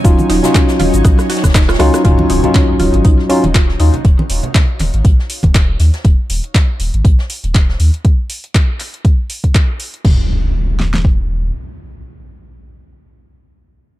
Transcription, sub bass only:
X:1
M:4/4
L:1/16
Q:"Swing 16ths" 1/4=120
K:Ebm
V:1 name="Sub bass" clef=bass
E,,, z E,,, z3 E,,, A,,, B,,, z2 E,,,3 D,, z | E,,, z E,,, z3 E,,, A,,, B,,, z2 E,,,3 E,, z | E,,, z E,,, z3 E,,, A,,, B,,, z2 E,,,3 E,, z | E,,, z E,,, z3 E,,, A,,, B,,, z2 E,,,3 E,, z |
z16 | E,,,12 z4 | z16 |]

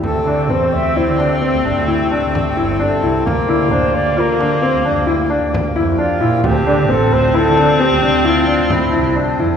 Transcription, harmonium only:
X:1
M:7/4
L:1/8
Q:1/4=132
K:Dm
V:1 name="Harmonium"
G12- G2- | G12- G2 | F,12- F,2 |]
V:2 name="Harmonium" clef=bass
[C,A,]12- [C,A,]2 | [F,B,]12- [F,B,]2 | [D,C]12- [D,C]2 |]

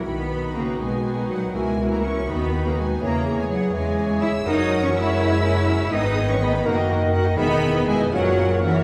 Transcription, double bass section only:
X:1
M:6/8
L:1/8
Q:3/8=82
K:B
V:1 name="Double bass section" clef=bass
B,,,3 B,,,3 | C,,3 D,,3 | E,,3 E,,3 | F,,,6 |
G,,,3 F,,,3 | E,,,3 F,,,3 |]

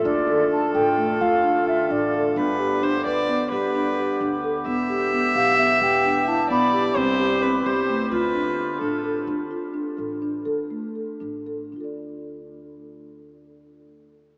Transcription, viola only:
X:1
M:5/8
L:1/8
Q:1/4=130
K:Ddor
V:1 name="Viola"
A4- A- | A4- A | B2 c d2 | B4 z |
e4- e- | e3 d2 | c2 B c2 | B3 A2 |
z4 z | z4 z | z4 z | z4 z |]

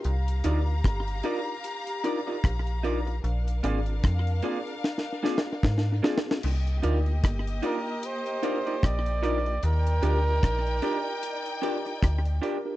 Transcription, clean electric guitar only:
X:1
M:4/4
L:1/16
Q:"Swing 16ths" 1/4=75
K:Cm
V:1 name="Clean electric guitar"
z2 [EFBd] z3 [EFBd] z3 [EFBd] [EFBd] z2 [EFBd] z | z2 [B,FAd] z3 [B,FAd] z3 [B,FAd] z3 [B,FAd] z | z2 [EFBd] z3 [EFBd] z3 [EFBd] [EFBd] z2 [EFBd] z | z2 [DGBd] z3 [DGBd] z3 [DGBd] z3 [DGBd] z |]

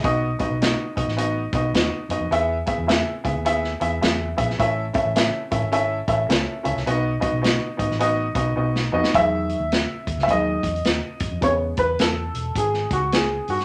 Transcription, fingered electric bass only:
X:1
M:4/4
L:1/16
Q:"Swing" 1/4=105
K:E
V:1 name="Fingered electric bass" clef=bass
B,,,2 z B,,,2 z B,,, A,,,3 B,,,2 D,, z F,, =F,, | E,,2 z E,,2 z C,, D,,3 E,,2 E,,2 ^A,,,2 | A,,,2 z A,,,2 z A,,, G,,,3 A,,,2 C,, z C,, =C,, | B,,,2 z B,,,2 z G,,, A,,,3 B,,,2 B,,,2 =F,, z |
E,,3 D,,2 z D,, C,, D,,2 E,,2 D,, z F,, =F,, | E,,2 E,,2 E,,2 E,,,2 G,,,2 C,,4 =G,,2 |]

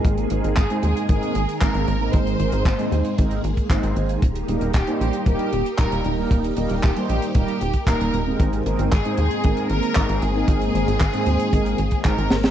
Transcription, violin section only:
X:1
M:4/4
L:1/8
Q:1/4=115
K:Ab
V:1 name="Violin section"
z2 A A A2 B2 | c4 z4 | z2 G G G2 B2 | z2 G G G2 B2 |
z2 A A2 B2 A- | A6 B2 |]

